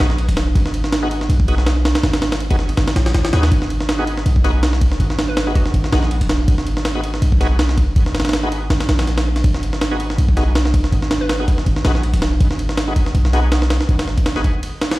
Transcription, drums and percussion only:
0.10 snare soft
0.18 ride medium
0.29 kick loud
0.29 ride medium
0.37 snare loud
0.37 ride medium
0.56 kick loud
0.56 ride medium
0.66 snare medium
0.74 ride medium
0.84 snare medium
0.92 snare loud
0.92 ride medium
1.11 ride medium
1.21 snare soft
1.30 ride medium
1.40 kick loud
1.48 ride medium
1.58 snare soft
1.66 snare loud
1.66 ride medium
1.85 snare loud
1.85 ride medium
1.95 snare loud
1.95 ride medium
2.03 snare loud
2.03 ride medium
2.13 snare loud
2.13 ride medium
2.22 snare loud
2.22 ride medium
2.32 snare loud
2.32 ride medium
2.40 ride medium
2.51 kick loud
2.51 ride medium
2.59 snare soft
2.69 ride medium
2.77 snare loud
2.77 ride medium
2.88 snare loud
2.88 ride medium
2.96 snare loud
2.96 ride medium
3.06 snare loud
3.06 ride medium
3.14 snare loud
3.14 ride medium
3.25 snare loud
3.25 ride medium
3.33 snare loud
3.33 ride medium
3.43 snare loud
3.43 ride medium
3.52 kick loud
3.52 ride medium
3.62 snare medium
3.70 ride medium
3.81 snare medium
3.89 snare loud
3.89 ride medium
4.07 ride medium
4.18 snare soft
4.26 ride medium
4.36 kick loud
4.45 snare soft
4.45 ride medium
4.63 snare loud
4.63 ride medium
4.73 snare medium
4.81 kick loud
4.81 ride medium
4.92 snare soft
5.00 ride medium
5.10 snare soft
5.19 snare loud
5.19 ride medium
5.37 snare loud
5.37 ride medium
5.55 kick loud
5.55 ride medium
5.66 snare soft
5.74 ride medium
5.84 snare soft
5.93 snare loud
5.93 ride medium
6.03 snare soft
6.11 ride medium
6.21 kick loud
6.21 ride medium
6.29 snare loud
6.29 ride medium
6.48 kick loud
6.48 ride medium
6.58 snare medium
6.67 ride medium
6.77 snare medium
6.85 snare loud
6.85 ride medium
7.04 ride medium
7.14 snare soft
7.22 ride medium
7.32 kick loud
7.41 snare soft
7.41 ride medium
7.59 snare loud
7.59 ride medium
7.69 snare medium
7.78 kick loud
7.78 ride medium
7.96 kick loud
7.96 ride medium
8.06 snare medium
8.15 snare medium
8.15 ride medium
8.20 snare medium
8.20 ride medium
8.25 snare medium
8.25 ride medium
8.29 snare medium
8.29 ride medium
8.33 snare loud
8.33 ride medium
8.52 ride medium
8.70 snare loud
8.70 ride medium
8.80 snare loud
8.80 ride medium
8.89 snare loud
8.89 ride medium
8.99 snare loud
8.99 ride medium
9.07 snare soft
9.07 ride medium
9.18 snare loud
9.18 ride medium
9.36 snare soft
9.36 ride medium
9.44 kick loud
9.44 ride loud
9.54 snare medium
9.63 ride medium
9.73 snare medium
9.81 snare loud
9.81 ride medium
10.00 ride medium
10.10 snare soft
10.18 ride medium
10.29 kick loud
10.37 snare soft
10.37 ride medium
10.55 snare loud
10.55 ride medium
10.65 snare medium
10.74 kick loud
10.74 ride medium
10.84 snare soft
10.92 ride medium
11.02 snare soft
11.11 snare loud
11.11 ride medium
11.29 snare loud
11.29 ride medium
11.48 kick loud
11.48 ride medium
11.58 snare soft
11.66 ride medium
11.76 snare soft
11.85 snare loud
11.85 ride medium
11.95 snare soft
12.03 ride medium
12.13 kick loud
12.13 ride medium
12.22 snare loud
12.22 ride medium
12.40 kick loud
12.40 ride medium
12.51 snare medium
12.59 ride medium
12.69 snare medium
12.77 snare loud
12.77 ride medium
12.96 kick loud
12.96 ride medium
13.06 snare soft
13.15 ride medium
13.25 snare medium
13.33 snare soft
13.33 ride medium
13.52 snare loud
13.52 ride medium
13.62 snare medium
13.70 snare loud
13.70 ride medium
13.81 snare medium
13.89 kick medium
13.89 ride medium
13.99 snare loud
13.99 ride medium
14.08 snare soft
14.18 kick medium
14.18 ride medium
14.26 snare loud
14.26 ride medium
14.36 snare medium
14.44 kick medium
14.44 ride medium
14.63 ride medium
14.81 snare loud
14.81 ride medium
14.91 snare loud
14.91 ride medium

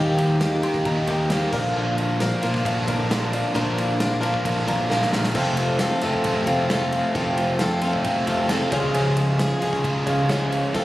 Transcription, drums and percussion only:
0.18 ride medium
0.41 snare loud
0.41 ride loud
0.63 ride medium
0.74 kick loud
0.74 snare soft
0.85 kick loud
0.85 ride loud
1.07 kick medium
1.07 ride medium
1.30 snare loud
1.30 ride loud
1.53 kick loud
1.53 crash loud
1.98 ride medium
2.20 snare loud
2.20 ride loud
2.43 ride medium
2.54 kick medium
2.54 snare soft
2.65 kick loud
2.65 ride loud
2.88 kick medium
2.88 ride medium
3.11 snare loud
3.11 ride medium
3.33 ride medium
3.55 kick loud
3.55 ride medium
3.78 ride medium
4.00 snare loud
4.00 ride loud
4.23 ride medium
4.34 kick medium
4.45 kick loud
4.45 ride loud
4.68 kick medium
4.68 ride medium
4.91 snare medium
5.02 snare medium
5.13 snare loud
5.24 snare medium
5.35 kick loud
5.35 crash loud
5.57 ride medium
5.79 snare loud
5.79 ride loud
6.01 ride medium
6.14 kick medium
6.24 kick loud
6.24 ride loud
6.47 kick medium
6.47 ride medium
6.70 snare loud
6.70 ride medium
6.92 ride medium
7.15 kick loud
7.15 ride medium
7.38 ride medium
7.59 snare loud
7.59 ride loud
7.81 ride medium
7.93 kick medium
8.04 kick loud
8.04 ride loud
8.27 kick medium
8.27 ride medium
8.49 snare loud
8.49 ride loud
8.72 kick loud
8.72 ride medium
8.94 ride loud
9.17 ride medium
9.39 snare loud
9.39 ride loud
9.62 ride medium
9.73 kick loud
9.73 snare soft
9.84 kick loud
9.84 ride loud
10.07 kick medium
10.07 ride medium
10.29 snare loud
10.29 ride medium
10.52 ride medium
10.74 kick loud
10.74 ride loud

